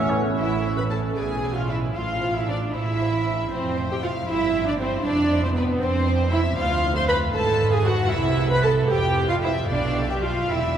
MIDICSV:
0, 0, Header, 1, 9, 480
1, 0, Start_track
1, 0, Key_signature, 0, "minor"
1, 0, Tempo, 530504
1, 337, Time_signature, 6, 3, 24, 8
1, 2248, Tempo, 512821
1, 8008, Tempo, 533333
1, 9932, End_track
2, 0, Start_track
2, 0, Title_t, "Violin section"
2, 0, Program_c, 0, 48
2, 330, Note_on_c, 0, 76, 56
2, 669, Note_off_c, 0, 76, 0
2, 697, Note_on_c, 0, 83, 50
2, 745, Note_off_c, 0, 83, 0
2, 818, Note_on_c, 0, 81, 46
2, 890, Note_off_c, 0, 81, 0
2, 1058, Note_on_c, 0, 80, 53
2, 1407, Note_off_c, 0, 80, 0
2, 1416, Note_on_c, 0, 77, 47
2, 1534, Note_off_c, 0, 77, 0
2, 1536, Note_on_c, 0, 76, 42
2, 1608, Note_off_c, 0, 76, 0
2, 1773, Note_on_c, 0, 77, 56
2, 2124, Note_off_c, 0, 77, 0
2, 2135, Note_on_c, 0, 76, 50
2, 2250, Note_off_c, 0, 76, 0
2, 2258, Note_on_c, 0, 74, 54
2, 2332, Note_off_c, 0, 74, 0
2, 2497, Note_on_c, 0, 76, 62
2, 3201, Note_off_c, 0, 76, 0
2, 3224, Note_on_c, 0, 72, 58
2, 3575, Note_off_c, 0, 72, 0
2, 3588, Note_on_c, 0, 79, 61
2, 3702, Note_off_c, 0, 79, 0
2, 3703, Note_on_c, 0, 77, 55
2, 3938, Note_off_c, 0, 77, 0
2, 3938, Note_on_c, 0, 76, 68
2, 4287, Note_off_c, 0, 76, 0
2, 4299, Note_on_c, 0, 74, 59
2, 4346, Note_off_c, 0, 74, 0
2, 4422, Note_on_c, 0, 72, 60
2, 4651, Note_off_c, 0, 72, 0
2, 4654, Note_on_c, 0, 74, 66
2, 5002, Note_off_c, 0, 74, 0
2, 5016, Note_on_c, 0, 72, 62
2, 5062, Note_off_c, 0, 72, 0
2, 5128, Note_on_c, 0, 71, 65
2, 5203, Note_off_c, 0, 71, 0
2, 5364, Note_on_c, 0, 72, 72
2, 5831, Note_off_c, 0, 72, 0
2, 5842, Note_on_c, 0, 76, 72
2, 6073, Note_on_c, 0, 77, 78
2, 6081, Note_off_c, 0, 76, 0
2, 6433, Note_off_c, 0, 77, 0
2, 6437, Note_on_c, 0, 84, 76
2, 6487, Note_off_c, 0, 84, 0
2, 6557, Note_on_c, 0, 83, 76
2, 6632, Note_off_c, 0, 83, 0
2, 6798, Note_on_c, 0, 81, 79
2, 7156, Note_off_c, 0, 81, 0
2, 7157, Note_on_c, 0, 80, 70
2, 7279, Note_on_c, 0, 78, 76
2, 7280, Note_off_c, 0, 80, 0
2, 7517, Note_on_c, 0, 76, 72
2, 7523, Note_off_c, 0, 78, 0
2, 7877, Note_on_c, 0, 83, 75
2, 7883, Note_off_c, 0, 76, 0
2, 8001, Note_off_c, 0, 83, 0
2, 8001, Note_on_c, 0, 81, 68
2, 8073, Note_off_c, 0, 81, 0
2, 8244, Note_on_c, 0, 79, 75
2, 8591, Note_on_c, 0, 77, 60
2, 8593, Note_off_c, 0, 79, 0
2, 8641, Note_off_c, 0, 77, 0
2, 8715, Note_on_c, 0, 76, 68
2, 8947, Note_on_c, 0, 74, 66
2, 8950, Note_off_c, 0, 76, 0
2, 9303, Note_off_c, 0, 74, 0
2, 9313, Note_on_c, 0, 79, 59
2, 9362, Note_off_c, 0, 79, 0
2, 9436, Note_on_c, 0, 77, 54
2, 9676, Note_off_c, 0, 77, 0
2, 9692, Note_on_c, 0, 76, 64
2, 9932, Note_off_c, 0, 76, 0
2, 9932, End_track
3, 0, Start_track
3, 0, Title_t, "Oboe"
3, 0, Program_c, 1, 68
3, 0, Note_on_c, 1, 76, 79
3, 84, Note_on_c, 1, 73, 72
3, 97, Note_off_c, 1, 76, 0
3, 334, Note_off_c, 1, 73, 0
3, 9932, End_track
4, 0, Start_track
4, 0, Title_t, "Violin section"
4, 0, Program_c, 2, 48
4, 334, Note_on_c, 2, 72, 44
4, 406, Note_off_c, 2, 72, 0
4, 578, Note_on_c, 2, 72, 37
4, 651, Note_off_c, 2, 72, 0
4, 816, Note_on_c, 2, 72, 39
4, 888, Note_off_c, 2, 72, 0
4, 1052, Note_on_c, 2, 74, 42
4, 1124, Note_off_c, 2, 74, 0
4, 1292, Note_on_c, 2, 74, 39
4, 1364, Note_off_c, 2, 74, 0
4, 1523, Note_on_c, 2, 74, 40
4, 1595, Note_off_c, 2, 74, 0
4, 1766, Note_on_c, 2, 72, 44
4, 1839, Note_off_c, 2, 72, 0
4, 1998, Note_on_c, 2, 72, 40
4, 2070, Note_off_c, 2, 72, 0
4, 2245, Note_on_c, 2, 72, 41
4, 2320, Note_off_c, 2, 72, 0
4, 2482, Note_on_c, 2, 72, 43
4, 2557, Note_off_c, 2, 72, 0
4, 2726, Note_on_c, 2, 72, 45
4, 2801, Note_off_c, 2, 72, 0
4, 2968, Note_on_c, 2, 72, 44
4, 3043, Note_off_c, 2, 72, 0
4, 3211, Note_on_c, 2, 72, 47
4, 3286, Note_off_c, 2, 72, 0
4, 3456, Note_on_c, 2, 72, 47
4, 3531, Note_off_c, 2, 72, 0
4, 3699, Note_on_c, 2, 72, 48
4, 3774, Note_off_c, 2, 72, 0
4, 3935, Note_on_c, 2, 72, 53
4, 4010, Note_off_c, 2, 72, 0
4, 4175, Note_on_c, 2, 72, 46
4, 4250, Note_off_c, 2, 72, 0
4, 4409, Note_on_c, 2, 72, 50
4, 4484, Note_off_c, 2, 72, 0
4, 4650, Note_on_c, 2, 72, 58
4, 4725, Note_off_c, 2, 72, 0
4, 4891, Note_on_c, 2, 72, 52
4, 4966, Note_off_c, 2, 72, 0
4, 5125, Note_on_c, 2, 72, 54
4, 5200, Note_off_c, 2, 72, 0
4, 5367, Note_on_c, 2, 72, 58
4, 5442, Note_off_c, 2, 72, 0
4, 5603, Note_on_c, 2, 72, 56
4, 5678, Note_off_c, 2, 72, 0
4, 5837, Note_on_c, 2, 72, 53
4, 5912, Note_off_c, 2, 72, 0
4, 6079, Note_on_c, 2, 72, 58
4, 6154, Note_off_c, 2, 72, 0
4, 6322, Note_on_c, 2, 72, 54
4, 6397, Note_off_c, 2, 72, 0
4, 6567, Note_on_c, 2, 72, 59
4, 6642, Note_off_c, 2, 72, 0
4, 6810, Note_on_c, 2, 71, 60
4, 6885, Note_off_c, 2, 71, 0
4, 7044, Note_on_c, 2, 71, 55
4, 7119, Note_off_c, 2, 71, 0
4, 7292, Note_on_c, 2, 71, 53
4, 7367, Note_off_c, 2, 71, 0
4, 7527, Note_on_c, 2, 71, 60
4, 7602, Note_off_c, 2, 71, 0
4, 7764, Note_on_c, 2, 71, 57
4, 7839, Note_off_c, 2, 71, 0
4, 8011, Note_on_c, 2, 71, 54
4, 8083, Note_off_c, 2, 71, 0
4, 8246, Note_on_c, 2, 72, 55
4, 8318, Note_off_c, 2, 72, 0
4, 8486, Note_on_c, 2, 72, 50
4, 8558, Note_off_c, 2, 72, 0
4, 8725, Note_on_c, 2, 72, 50
4, 8797, Note_off_c, 2, 72, 0
4, 8960, Note_on_c, 2, 77, 58
4, 9292, Note_off_c, 2, 77, 0
4, 9317, Note_on_c, 2, 76, 50
4, 9682, Note_off_c, 2, 76, 0
4, 9686, Note_on_c, 2, 74, 52
4, 9932, Note_off_c, 2, 74, 0
4, 9932, End_track
5, 0, Start_track
5, 0, Title_t, "Viola section"
5, 0, Program_c, 3, 48
5, 0, Note_on_c, 3, 57, 71
5, 0, Note_on_c, 3, 61, 73
5, 150, Note_off_c, 3, 57, 0
5, 150, Note_off_c, 3, 61, 0
5, 337, Note_on_c, 3, 64, 56
5, 673, Note_off_c, 3, 64, 0
5, 704, Note_on_c, 3, 71, 56
5, 751, Note_off_c, 3, 71, 0
5, 819, Note_on_c, 3, 69, 51
5, 889, Note_off_c, 3, 69, 0
5, 991, Note_on_c, 3, 69, 47
5, 1055, Note_off_c, 3, 69, 0
5, 1055, Note_on_c, 3, 68, 61
5, 1412, Note_off_c, 3, 68, 0
5, 1419, Note_on_c, 3, 65, 54
5, 1535, Note_off_c, 3, 65, 0
5, 1535, Note_on_c, 3, 64, 52
5, 1772, Note_on_c, 3, 65, 62
5, 1773, Note_off_c, 3, 64, 0
5, 2131, Note_off_c, 3, 65, 0
5, 2138, Note_on_c, 3, 64, 56
5, 2245, Note_on_c, 3, 62, 58
5, 2252, Note_off_c, 3, 64, 0
5, 2488, Note_off_c, 3, 62, 0
5, 2489, Note_on_c, 3, 64, 67
5, 3211, Note_off_c, 3, 64, 0
5, 3214, Note_on_c, 3, 60, 66
5, 3569, Note_off_c, 3, 60, 0
5, 3588, Note_on_c, 3, 67, 65
5, 3633, Note_off_c, 3, 67, 0
5, 3694, Note_on_c, 3, 65, 58
5, 3769, Note_off_c, 3, 65, 0
5, 3930, Note_on_c, 3, 64, 71
5, 4283, Note_off_c, 3, 64, 0
5, 4298, Note_on_c, 3, 62, 69
5, 4412, Note_on_c, 3, 60, 73
5, 4414, Note_off_c, 3, 62, 0
5, 4645, Note_on_c, 3, 62, 70
5, 4646, Note_off_c, 3, 60, 0
5, 4998, Note_off_c, 3, 62, 0
5, 5011, Note_on_c, 3, 60, 70
5, 5126, Note_on_c, 3, 59, 73
5, 5129, Note_off_c, 3, 60, 0
5, 5360, Note_off_c, 3, 59, 0
5, 5362, Note_on_c, 3, 60, 83
5, 5838, Note_on_c, 3, 64, 78
5, 5840, Note_off_c, 3, 60, 0
5, 5913, Note_off_c, 3, 64, 0
5, 6077, Note_on_c, 3, 65, 79
5, 6435, Note_off_c, 3, 65, 0
5, 6444, Note_on_c, 3, 72, 80
5, 6554, Note_on_c, 3, 71, 86
5, 6563, Note_off_c, 3, 72, 0
5, 6629, Note_off_c, 3, 71, 0
5, 6799, Note_on_c, 3, 69, 87
5, 7156, Note_off_c, 3, 69, 0
5, 7165, Note_on_c, 3, 68, 78
5, 7280, Note_on_c, 3, 66, 84
5, 7286, Note_off_c, 3, 68, 0
5, 7521, Note_on_c, 3, 64, 89
5, 7523, Note_off_c, 3, 66, 0
5, 7885, Note_off_c, 3, 64, 0
5, 7892, Note_on_c, 3, 71, 82
5, 8008, Note_on_c, 3, 69, 80
5, 8009, Note_off_c, 3, 71, 0
5, 8240, Note_on_c, 3, 67, 87
5, 8244, Note_off_c, 3, 69, 0
5, 8598, Note_off_c, 3, 67, 0
5, 8607, Note_on_c, 3, 65, 72
5, 8654, Note_off_c, 3, 65, 0
5, 8726, Note_on_c, 3, 64, 75
5, 8798, Note_off_c, 3, 64, 0
5, 8959, Note_on_c, 3, 62, 77
5, 9309, Note_off_c, 3, 62, 0
5, 9327, Note_on_c, 3, 67, 64
5, 9440, Note_off_c, 3, 67, 0
5, 9440, Note_on_c, 3, 65, 62
5, 9684, Note_off_c, 3, 65, 0
5, 9684, Note_on_c, 3, 64, 66
5, 9932, Note_off_c, 3, 64, 0
5, 9932, End_track
6, 0, Start_track
6, 0, Title_t, "Clarinet"
6, 0, Program_c, 4, 71
6, 87, Note_on_c, 4, 61, 68
6, 199, Note_off_c, 4, 61, 0
6, 9932, End_track
7, 0, Start_track
7, 0, Title_t, "Bassoon"
7, 0, Program_c, 5, 70
7, 89, Note_on_c, 5, 52, 62
7, 200, Note_off_c, 5, 52, 0
7, 9932, End_track
8, 0, Start_track
8, 0, Title_t, "Cello section"
8, 0, Program_c, 6, 48
8, 0, Note_on_c, 6, 45, 79
8, 151, Note_off_c, 6, 45, 0
8, 341, Note_on_c, 6, 45, 46
8, 974, Note_off_c, 6, 45, 0
8, 1057, Note_on_c, 6, 47, 51
8, 1687, Note_off_c, 6, 47, 0
8, 1770, Note_on_c, 6, 45, 51
8, 2403, Note_off_c, 6, 45, 0
8, 2492, Note_on_c, 6, 45, 54
8, 3127, Note_off_c, 6, 45, 0
8, 3209, Note_on_c, 6, 41, 60
8, 3848, Note_off_c, 6, 41, 0
8, 3933, Note_on_c, 6, 43, 61
8, 4566, Note_off_c, 6, 43, 0
8, 4650, Note_on_c, 6, 41, 68
8, 5281, Note_off_c, 6, 41, 0
8, 5370, Note_on_c, 6, 41, 68
8, 5998, Note_off_c, 6, 41, 0
8, 6077, Note_on_c, 6, 38, 73
8, 6720, Note_off_c, 6, 38, 0
8, 6800, Note_on_c, 6, 44, 76
8, 7439, Note_off_c, 6, 44, 0
8, 7523, Note_on_c, 6, 48, 70
8, 8159, Note_off_c, 6, 48, 0
8, 8248, Note_on_c, 6, 41, 71
8, 8875, Note_off_c, 6, 41, 0
8, 8960, Note_on_c, 6, 47, 57
8, 9647, Note_off_c, 6, 47, 0
8, 9686, Note_on_c, 6, 40, 54
8, 9932, Note_off_c, 6, 40, 0
8, 9932, End_track
9, 0, Start_track
9, 0, Title_t, "Double bass section"
9, 0, Program_c, 7, 48
9, 0, Note_on_c, 7, 33, 83
9, 150, Note_off_c, 7, 33, 0
9, 336, Note_on_c, 7, 33, 47
9, 971, Note_off_c, 7, 33, 0
9, 1054, Note_on_c, 7, 35, 50
9, 1685, Note_off_c, 7, 35, 0
9, 1771, Note_on_c, 7, 33, 49
9, 2403, Note_off_c, 7, 33, 0
9, 2486, Note_on_c, 7, 33, 53
9, 3124, Note_off_c, 7, 33, 0
9, 3213, Note_on_c, 7, 29, 57
9, 3850, Note_off_c, 7, 29, 0
9, 3935, Note_on_c, 7, 31, 59
9, 4567, Note_off_c, 7, 31, 0
9, 4646, Note_on_c, 7, 29, 65
9, 5279, Note_off_c, 7, 29, 0
9, 5362, Note_on_c, 7, 29, 67
9, 5994, Note_off_c, 7, 29, 0
9, 6076, Note_on_c, 7, 38, 70
9, 6719, Note_off_c, 7, 38, 0
9, 6803, Note_on_c, 7, 32, 74
9, 7441, Note_off_c, 7, 32, 0
9, 7518, Note_on_c, 7, 36, 73
9, 8157, Note_off_c, 7, 36, 0
9, 8240, Note_on_c, 7, 29, 72
9, 8871, Note_off_c, 7, 29, 0
9, 8951, Note_on_c, 7, 35, 62
9, 9643, Note_off_c, 7, 35, 0
9, 9685, Note_on_c, 7, 28, 55
9, 9932, Note_off_c, 7, 28, 0
9, 9932, End_track
0, 0, End_of_file